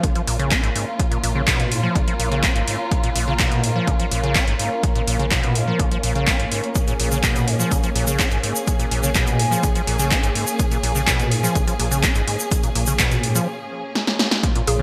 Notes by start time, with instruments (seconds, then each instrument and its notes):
Already playing: string section A#3 C#4 F4, ambient pad A#4 F5
0.03 sub bass A#1, acid bass C#3, kick, closed hi-hat
0.09 ambient pad A#5
0.15 acid bass F3, closed hi-hat
0.27 sub bass A#1, acid bass A#2, open hi-hat
0.39 acid bass C#3, closed hi-hat
0.51 acid bass C#4, kick, clap, closed hi-hat
0.63 sub bass G#1, acid bass G#2, closed hi-hat
0.75 acid bass G#2, open hi-hat
0.99 kick, closed hi-hat
1.12 acid bass A#2, closed hi-hat
1.23 sub bass A#1, acid bass A#2, open hi-hat
1.35 acid bass C#3
1.47 acid bass B2, kick, clap, closed hi-hat
1.60 sub bass A#2, closed hi-hat
1.71 acid bass G#2, open hi-hat
1.83 acid bass F3
1.95 sub bass A#1, acid bass C#3, kick, closed hi-hat
2.08 acid bass F3, closed hi-hat
2.20 sub bass A#1, acid bass A#2, open hi-hat
2.32 acid bass C#3, closed hi-hat
2.43 acid bass C#4, kick, clap, closed hi-hat
2.55 sub bass G#1, acid bass G#2, closed hi-hat
2.68 acid bass G#2, open hi-hat
2.91 kick, closed hi-hat
3.04 acid bass A#2, closed hi-hat
3.15 sub bass A#1, acid bass A#2, open hi-hat
3.28 acid bass C#3
3.39 acid bass B2, kick, clap, closed hi-hat
3.52 sub bass A#2, closed hi-hat
3.64 acid bass G#2, open hi-hat
3.76 acid bass F3
3.87 sub bass A#1, acid bass C#3, kick, closed hi-hat
4.00 acid bass F3, closed hi-hat
4.11 sub bass A#1, acid bass A#2, open hi-hat
4.24 acid bass C#3, closed hi-hat
4.35 acid bass C#4, kick, clap, closed hi-hat
4.48 sub bass G#1, acid bass G#2, closed hi-hat
4.59 acid bass G#2, open hi-hat
4.83 kick, closed hi-hat
4.95 acid bass A#2, closed hi-hat
5.07 sub bass A#1, acid bass A#2, open hi-hat
5.19 acid bass C#3, closed hi-hat
5.31 acid bass B2, kick, clap, closed hi-hat
5.43 sub bass A#2, closed hi-hat
5.55 acid bass G#2, open hi-hat
5.68 acid bass F3
5.79 sub bass A#1, acid bass C#3, kick, closed hi-hat
5.91 acid bass F3, closed hi-hat
6.03 sub bass A#1, acid bass A#2, open hi-hat
6.15 acid bass C#3, closed hi-hat
6.27 acid bass C#4, kick, clap, closed hi-hat
6.39 sub bass A#1, acid bass G#2, closed hi-hat
6.52 acid bass G#2, open hi-hat
6.64 closed hi-hat
6.75 string section G#4, kick, closed hi-hat, shaker
6.87 acid bass A#2, closed hi-hat, shaker
6.99 sub bass A#1, acid bass A#2, open hi-hat
7.11 acid bass C#3, shaker
7.23 acid bass B2, kick, clap, closed hi-hat, shaker
7.35 sub bass A#2, closed hi-hat, shaker
7.48 acid bass G#2, open hi-hat
7.60 acid bass F3, shaker
7.71 sub bass A#1, acid bass C#3, kick, closed hi-hat, shaker
7.83 acid bass F3, closed hi-hat, shaker
7.95 sub bass A#1, acid bass A#2, open hi-hat
8.07 acid bass C#3, ambient pad G#5, closed hi-hat, shaker
8.19 acid bass C#4, kick, clap, closed hi-hat, shaker
8.31 sub bass G#1, acid bass G#2, closed hi-hat, shaker
8.43 acid bass G#2, open hi-hat
8.56 shaker
8.67 kick, closed hi-hat, shaker
8.79 acid bass A#2, closed hi-hat, shaker
8.91 sub bass A#1, acid bass A#2, open hi-hat
9.03 acid bass C#3, shaker
9.15 acid bass B2, kick, clap, closed hi-hat, shaker
9.27 sub bass A#2, closed hi-hat, shaker
9.39 acid bass G#2, open hi-hat
9.51 acid bass F3, shaker
9.63 sub bass A#1, acid bass C#3, kick, closed hi-hat, shaker
9.75 acid bass F3, closed hi-hat, shaker
9.87 sub bass A#1, acid bass A#2, open hi-hat
9.99 acid bass C#3, closed hi-hat, shaker
10.11 acid bass C#4, kick, clap, closed hi-hat, shaker
10.23 sub bass G#1, acid bass G#2, closed hi-hat, shaker
10.35 acid bass G#2, open hi-hat
10.47 shaker
10.59 kick, closed hi-hat, shaker
10.71 acid bass A#2, closed hi-hat, shaker
10.83 sub bass A#1, acid bass A#2, open hi-hat
10.95 acid bass C#3, shaker
11.07 acid bass B2, kick, clap, closed hi-hat, shaker
11.19 sub bass A#2, closed hi-hat, shaker
11.31 acid bass G#2, open hi-hat
11.44 acid bass F3, shaker
11.55 sub bass A#1, acid bass C#3, kick, closed hi-hat, shaker
11.67 acid bass F3, closed hi-hat, shaker
11.79 sub bass A#1, acid bass A#2, open hi-hat
11.91 acid bass C#3, closed hi-hat, shaker
12.03 acid bass C#4, kick, clap, closed hi-hat, shaker
12.15 sub bass G#1, acid bass G#2, closed hi-hat, shaker
12.27 acid bass G#2, open hi-hat
12.39 shaker
12.51 kick, closed hi-hat, shaker
12.63 acid bass A#2, closed hi-hat, shaker
12.75 sub bass A#1, acid bass A#2, open hi-hat
12.86 acid bass C#3, shaker
12.99 acid bass B2, kick, clap, closed hi-hat, shaker
13.11 sub bass A#2, closed hi-hat, shaker
13.23 acid bass G#2, open hi-hat
13.35 acid bass F3, closed hi-hat, shaker
13.95 snare
14.07 snare
14.19 snare
14.31 snare
14.43 string section A#3 C#4 F4, kick, closed hi-hat
14.55 acid bass A#2, closed hi-hat
14.67 sub bass A#1, acid bass A#2, synth pluck G#4, open hi-hat